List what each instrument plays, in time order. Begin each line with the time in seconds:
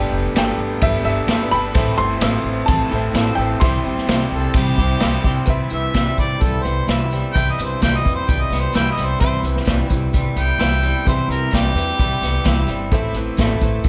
Already playing: clean electric guitar G3 B3 D4 A4, twelve-string acoustic guitar G3 A3 D4 G4 B4, upright piano A4 B4 D5, grand piano G5
0.11 upright bass F1
0.34 upright bass G1, clean electric guitar G3 B3 D4 A4, grand piano G5, snare, ride bell
0.58 upright bass G1
0.81 upright bass G1, twelve-string acoustic guitar G3 A3 D4 G4 B4, grand piano E5, kick, ride bell
1.04 upright bass G1, clean electric guitar B3 D4 A4, twelve-string acoustic guitar D4 G4 B4, grand piano E5
1.27 upright bass G1, clean electric guitar G3 B3 D4 A4, twelve-string acoustic guitar A3 D4 G4 B4, snare, ride bell
1.51 upright bass G1, clean electric guitar B3 D4 A4, upright piano A4 B4 G5, grand piano B5
1.73 upright bass A1, clean electric guitar A2 E3 C4 E4 A4, twelve-string acoustic guitar A2, upright piano A4 C5 E5, kick, ride bell
1.77 twelve-string acoustic guitar E3 A3 C4 E4 C5
1.98 upright bass G1, twelve-string acoustic guitar C4 E4 C5, grand piano C6
2.02 twelve-string acoustic guitar A3
2.19 upright bass A1, clean electric guitar A2 E3 C4 E4 A4, snare, ride bell
2.44 upright bass A1
2.66 upright bass A1, twelve-string acoustic guitar A2 E3 A3 C4 E4, grand piano A5, kick, ride bell
2.70 twelve-string acoustic guitar C5
2.89 upright bass A1, clean electric guitar C4 E4 A4, upright piano A4, twelve-string acoustic guitar C5
2.93 twelve-string acoustic guitar A3 C4 E4, upright piano C5 E5
3.13 upright bass A1, clean electric guitar E3 C4 E4 A4, twelve-string acoustic guitar A3 C4 E4, snare, ride bell
3.17 twelve-string acoustic guitar C5
3.35 upright bass A1, clean electric guitar A4, grand piano G5
3.39 clean electric guitar C4 E4
3.60 upright bass C2, twelve-string acoustic guitar C3 E3 G3 C4 E4 C5, clean electric guitar C3 G3 C4, upright piano G4 C5 E5, grand piano C6, kick, ride bell
3.64 clean electric guitar E4 G4
3.84 upright bass A1, twelve-string acoustic guitar G3 C4 E4 C5
3.98 snare
4.07 upright bass C2, clean electric guitar C3 G3 C4 E4 G4, snare, ride bell
4.31 upright bass C2, harmonica A4
4.54 upright bass C2, twelve-string acoustic guitar C3 E3 G3 C4 E4 C5, harmonica G4, kick, ride bell
4.77 upright bass C2, twelve-string acoustic guitar G3 C4 E4 C5, clean electric guitar C4 E4 G4, kick
5.00 upright bass C2, twelve-string acoustic guitar G3 C4 E4 C5, clean electric guitar G3 C4 E4 G4, snare, ride bell
5.24 upright bass C2, clean electric guitar C4 E4 G4, kick
5.46 upright bass C2, twelve-string acoustic guitar C3 E3 G3 C4 E4 B4, clean electric guitar C3, upright piano G4 B4, kick, closed hi-hat
5.50 upright piano E5
5.70 upright bass C2, clean electric guitar E3, twelve-string acoustic guitar G3 C4 E4 B4, harmonica E5, closed hi-hat
5.94 upright bass C2, twelve-string acoustic guitar C3 E3 G3 C4 E4 B4, clean electric guitar G3, kick, snare, closed hi-hat
6.18 upright bass C2, clean electric guitar E3, twelve-string acoustic guitar G3 C4 E4 B4, harmonica D5, kick, closed hi-hat
6.41 upright bass C2, clean electric guitar G3, twelve-string acoustic guitar G3 E4 B4, harmonica A4, kick, closed hi-hat
6.63 upright bass C2, clean electric guitar B3, harmonica C5, closed hi-hat
6.87 upright bass C2, twelve-string acoustic guitar C3 E3 G3 C4 E4 B4, clean electric guitar E4, snare, closed hi-hat
7.11 clean electric guitar G3, twelve-string acoustic guitar G3 C4 E4 B4, closed hi-hat
7.33 upright bass C2, twelve-string acoustic guitar C3 E3 G3 C4 E4 B4, clean electric guitar C3, upright piano G4 B4, harmonica G5, kick, closed hi-hat
7.37 upright piano E5
7.52 harmonica D#5
7.58 upright bass C2, clean electric guitar E3, twelve-string acoustic guitar G3 C4 E4 B4, closed hi-hat
7.65 harmonica C5
7.80 upright bass C2, twelve-string acoustic guitar C3 E3 G3 C4 E4 B4, clean electric guitar G3, harmonica G5, kick, snare, closed hi-hat
7.97 harmonica D#5
8.03 upright bass E2, twelve-string acoustic guitar G3 C4 E4 B4, kick, closed hi-hat
8.07 clean electric guitar E3
8.15 harmonica C5
8.27 upright bass C2, twelve-string acoustic guitar G3 E4 B4, clean electric guitar G3, harmonica G5, kick, closed hi-hat
8.42 harmonica D#5
8.50 upright bass C2, clean electric guitar B3, snare, closed hi-hat
8.60 harmonica C5
8.72 upright bass C2, twelve-string acoustic guitar C3 E3 G3 C4 E4 B4, clean electric guitar E4, harmonica G5, snare, closed hi-hat
8.92 harmonica D#5
8.97 upright bass C2, clean electric guitar G3, twelve-string acoustic guitar G3 C4 E4 B4, closed hi-hat
9.06 harmonica C5
9.20 upright bass C2, clean electric guitar C3, twelve-string acoustic guitar C3 E3 G3 C4 E4 B4, upright piano G4 B4, harmonica C5, kick, closed hi-hat
9.24 upright piano E5
9.42 upright bass C2, clean electric guitar E3, twelve-string acoustic guitar C4 E4 B4, closed hi-hat
9.47 twelve-string acoustic guitar G3
9.56 snare
9.65 upright bass C2, twelve-string acoustic guitar C3 E3 G3 C4 E4 B4, clean electric guitar G3, kick, snare, closed hi-hat
9.89 upright bass C2, clean electric guitar E3, twelve-string acoustic guitar G3 C4 E4 B4, kick, closed hi-hat
10.13 upright bass C2, twelve-string acoustic guitar G3 E4 B4, clean electric guitar G3, kick, closed hi-hat
10.36 upright bass C2, clean electric guitar B3, harmonica G5, closed hi-hat
10.59 upright bass C2, twelve-string acoustic guitar C3 E3 G3 C4 E4 B4, clean electric guitar E4, snare, closed hi-hat
10.83 clean electric guitar G3, twelve-string acoustic guitar C4 E4 B4, closed hi-hat
10.87 twelve-string acoustic guitar G3
11.05 upright bass C2, clean electric guitar C3, twelve-string acoustic guitar C3 E3 G3 C4 E4 B4, upright piano G4 B4 E5, harmonica C5, kick, closed hi-hat
11.28 upright bass C2, clean electric guitar E3, twelve-string acoustic guitar E4 B4, harmonica A#4, closed hi-hat
11.32 twelve-string acoustic guitar G3 C4
11.51 upright bass C2, twelve-string acoustic guitar C3 E3 G3 C4 E4 B4, clean electric guitar G3, kick, snare, closed hi-hat
11.56 harmonica G4
11.75 upright bass E2, clean electric guitar E3, twelve-string acoustic guitar G3 C4 E4 B4, closed hi-hat
11.98 upright bass C2, twelve-string acoustic guitar G3 E4 B4, clean electric guitar G3, kick, closed hi-hat
12.22 upright bass C2, clean electric guitar B3, snare, closed hi-hat
12.44 upright bass C2, twelve-string acoustic guitar C3 E3 G3 C4 E4 B4, clean electric guitar E4, kick, snare, closed hi-hat
12.67 upright bass G1, clean electric guitar G3, twelve-string acoustic guitar G3 C4 E4 B4, closed hi-hat
12.91 upright bass A1, clean electric guitar A2, twelve-string acoustic guitar A2 E3 A3 C4 E4 A4, upright piano A4 C5 E5, kick, closed hi-hat
13.13 upright bass A1, clean electric guitar E3, twelve-string acoustic guitar C4 E4 A4, closed hi-hat
13.18 twelve-string acoustic guitar A3
13.37 upright bass A1, twelve-string acoustic guitar A2 E3 A3 C4 E4 A4, clean electric guitar A3, kick, snare, closed hi-hat
13.61 upright bass A1, clean electric guitar E3, twelve-string acoustic guitar C4 E4 A4, kick, closed hi-hat
13.65 twelve-string acoustic guitar A3
13.84 upright bass A1, twelve-string acoustic guitar A3 C4, clean electric guitar A3, kick, closed hi-hat